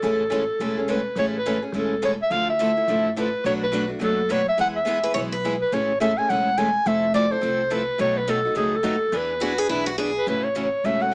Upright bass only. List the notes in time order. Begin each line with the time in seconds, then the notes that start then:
0.03 A1
0.59 E1
1.15 A1
1.72 E1
2.30 D2
2.88 A1
3.44 B1
4.01 F#1
4.58 E2
5.15 B1
5.72 A1
6.29 E1
6.86 F1
7.42 C2
7.99 B1
8.56 C#2
8.84 D#2
9.12 E2
9.69 B1
10.27 A1
10.84 E1